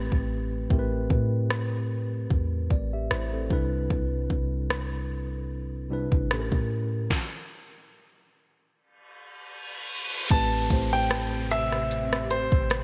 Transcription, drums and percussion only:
0.12 kick
0.70 kick
1.10 kick
1.50 cross-stick
2.30 kick
2.70 kick
3.11 cross-stick
3.50 kick
3.90 kick
4.30 kick
4.70 cross-stick
6.12 kick
6.31 cross-stick
6.52 kick
7.10 kick, snare
10.30 kick, closed hi-hat
10.70 kick, closed hi-hat
11.10 cross-stick, closed hi-hat
11.51 closed hi-hat
11.72 cross-stick
11.91 closed hi-hat
12.13 cross-stick
12.30 closed hi-hat
12.52 kick
12.70 cross-stick, closed hi-hat

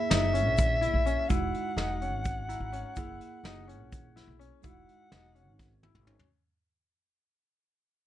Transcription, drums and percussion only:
0.11 snare, closed hi-hat, shaker
0.35 closed hi-hat
0.58 kick, closed hi-hat, shaker
0.82 closed hi-hat
1.06 closed hi-hat, shaker
1.30 kick, closed hi-hat, shaker
1.54 closed hi-hat
1.77 snare, closed hi-hat, shaker
2.02 closed hi-hat
2.25 kick, closed hi-hat, shaker
2.50 closed hi-hat
2.73 closed hi-hat, shaker
2.96 kick, closed hi-hat, shaker
3.21 closed hi-hat
3.44 snare, closed hi-hat, shaker
3.69 closed hi-hat
3.92 kick, closed hi-hat, shaker
4.17 snare, closed hi-hat
4.41 closed hi-hat, shaker
4.63 kick, closed hi-hat, shaker
4.89 closed hi-hat
5.12 snare, closed hi-hat
5.36 closed hi-hat
5.59 kick, snare, shaker
5.83 high tom
5.95 mid tom
6.07 mid tom
6.19 floor tom

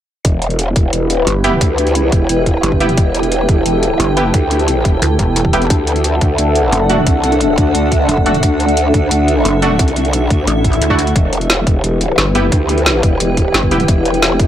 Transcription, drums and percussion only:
0.25 kick, closed hi-hat
0.42 closed hi-hat
0.50 closed hi-hat
0.59 closed hi-hat
0.76 kick, closed hi-hat
0.93 closed hi-hat
1.10 closed hi-hat
1.27 closed hi-hat
1.44 closed hi-hat
1.61 kick, closed hi-hat
1.78 closed hi-hat
1.87 closed hi-hat
1.95 closed hi-hat
2.12 kick, closed hi-hat
2.29 closed hi-hat
2.46 kick, closed hi-hat
2.63 closed hi-hat
2.72 kick
2.80 closed hi-hat
2.89 closed hi-hat
2.97 kick, closed hi-hat
3.15 closed hi-hat
3.23 closed hi-hat
3.32 closed hi-hat
3.49 kick, closed hi-hat
3.66 closed hi-hat
3.83 closed hi-hat
4.00 closed hi-hat
4.17 closed hi-hat
4.34 kick, closed hi-hat
4.51 closed hi-hat
4.59 closed hi-hat
4.68 closed hi-hat
4.85 kick, closed hi-hat
5.02 closed hi-hat
5.19 kick, closed hi-hat
5.36 closed hi-hat
5.45 kick
5.53 closed hi-hat
5.62 closed hi-hat
5.70 kick, closed hi-hat
5.87 closed hi-hat
5.96 closed hi-hat
6.04 closed hi-hat
6.21 kick, closed hi-hat
6.38 closed hi-hat
6.55 closed hi-hat
6.72 closed hi-hat
6.90 closed hi-hat
7.07 kick, closed hi-hat
7.24 closed hi-hat
7.32 closed hi-hat
7.41 closed hi-hat
7.58 kick, closed hi-hat
7.75 closed hi-hat
7.92 kick, closed hi-hat
8.09 closed hi-hat
8.17 kick
8.26 closed hi-hat
8.34 closed hi-hat
8.43 kick, closed hi-hat
8.60 closed hi-hat
8.68 closed hi-hat
8.77 closed hi-hat
8.94 kick, closed hi-hat
9.11 closed hi-hat
9.28 closed hi-hat
9.45 closed hi-hat
9.62 closed hi-hat
9.79 kick, closed hi-hat
9.88 closed hi-hat
9.96 closed hi-hat
10.05 closed hi-hat
10.13 closed hi-hat
10.30 kick, closed hi-hat
10.47 closed hi-hat
10.64 kick, closed hi-hat
10.73 closed hi-hat
10.82 closed hi-hat
10.90 kick
10.99 closed hi-hat
11.07 closed hi-hat
11.16 kick, closed hi-hat
11.33 closed hi-hat
11.41 closed hi-hat
11.50 snare, closed hi-hat
11.67 kick, closed hi-hat
11.84 closed hi-hat
12.01 closed hi-hat
12.18 snare, closed hi-hat
12.35 closed hi-hat
12.52 kick, closed hi-hat
12.69 closed hi-hat
12.78 closed hi-hat
12.86 snare, closed hi-hat
13.03 kick, closed hi-hat
13.20 closed hi-hat
13.37 kick, closed hi-hat
13.54 snare, closed hi-hat
13.63 kick
13.71 closed hi-hat
13.80 closed hi-hat
13.88 kick, closed hi-hat
14.05 closed hi-hat
14.14 closed hi-hat
14.22 snare, closed hi-hat
14.39 kick, closed hi-hat

